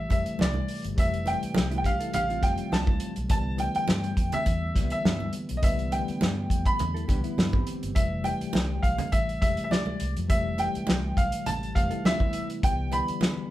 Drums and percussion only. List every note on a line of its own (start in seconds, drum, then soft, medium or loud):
0.10 kick loud
0.10 closed hi-hat medium
0.10 muted conga soft
0.26 closed hi-hat soft
0.39 snare loud
0.39 high conga medium
0.54 high conga medium
0.68 open hi-hat medium
0.84 closed hi-hat medium
0.98 kick loud
0.98 closed hi-hat loud
1.14 closed hi-hat soft
1.26 closed hi-hat medium
1.26 muted conga soft
1.43 closed hi-hat medium
1.55 snare loud
1.55 high conga medium
1.71 closed hi-hat soft
1.84 kick medium
1.84 closed hi-hat medium
2.00 closed hi-hat medium
2.13 closed hi-hat medium
2.13 muted conga soft
2.13 low conga medium
2.30 closed hi-hat soft
2.43 kick loud
2.43 snare soft
2.43 closed hi-hat medium
2.58 closed hi-hat soft
2.72 snare loud
2.72 high conga medium
2.87 kick loud
2.87 high conga medium
3.00 closed hi-hat medium
3.16 closed hi-hat medium
3.30 kick loud
3.30 closed hi-hat loud
3.58 closed hi-hat medium
3.58 muted conga soft
3.75 closed hi-hat soft
3.88 snare loud
3.88 high conga medium
4.04 closed hi-hat soft
4.17 kick medium
4.17 closed hi-hat medium
4.32 closed hi-hat medium
4.32 low conga medium
4.46 kick medium
4.46 closed hi-hat medium
4.46 muted conga soft
4.76 kick medium
4.76 snare soft
4.76 closed hi-hat medium
4.90 closed hi-hat soft
5.05 snare loud
5.05 high conga medium
5.20 high conga medium
5.33 closed hi-hat medium
5.49 closed hi-hat medium
5.63 kick loud
5.63 closed hi-hat loud
5.79 closed hi-hat soft
5.92 closed hi-hat medium
5.92 muted conga soft
6.08 closed hi-hat soft
6.21 snare loud
6.21 high conga medium
6.50 kick medium
6.50 closed hi-hat medium
6.65 kick loud
6.65 closed hi-hat medium
6.79 closed hi-hat medium
6.79 muted conga soft
6.79 low conga medium
6.96 closed hi-hat soft
7.09 kick medium
7.09 closed hi-hat medium
7.09 muted conga soft
7.24 closed hi-hat soft
7.38 snare loud
7.38 high conga medium
7.53 kick loud
7.53 high conga medium
7.67 closed hi-hat medium
7.83 closed hi-hat medium
7.96 kick loud
7.96 closed hi-hat loud
8.24 closed hi-hat medium
8.24 muted conga soft
8.41 closed hi-hat medium
8.53 snare loud
8.53 high conga medium
8.83 kick medium
8.83 closed hi-hat medium
8.98 closed hi-hat medium
8.98 low conga medium
9.12 kick medium
9.12 closed hi-hat medium
9.12 muted conga soft
9.29 closed hi-hat soft
9.42 kick loud
9.42 closed hi-hat medium
9.57 closed hi-hat soft
9.71 snare loud
9.71 high conga medium
9.86 high conga medium
10.00 closed hi-hat medium
10.17 closed hi-hat medium
10.30 kick loud
10.30 closed hi-hat loud
10.58 closed hi-hat medium
10.58 muted conga soft
10.75 closed hi-hat soft
10.87 snare loud
10.87 high conga medium
11.17 kick loud
11.17 closed hi-hat medium
11.32 closed hi-hat medium
11.46 closed hi-hat medium
11.46 muted conga soft
11.46 low conga medium
11.63 closed hi-hat soft
11.76 kick loud
11.76 closed hi-hat medium
11.91 closed hi-hat soft
12.05 snare loud
12.05 high conga medium
12.20 kick medium
12.20 high conga medium
12.33 closed hi-hat medium
12.50 closed hi-hat medium
12.63 kick loud
12.63 closed hi-hat loud
12.92 closed hi-hat medium
12.92 muted conga soft
13.08 closed hi-hat soft
13.21 snare loud
13.21 high conga medium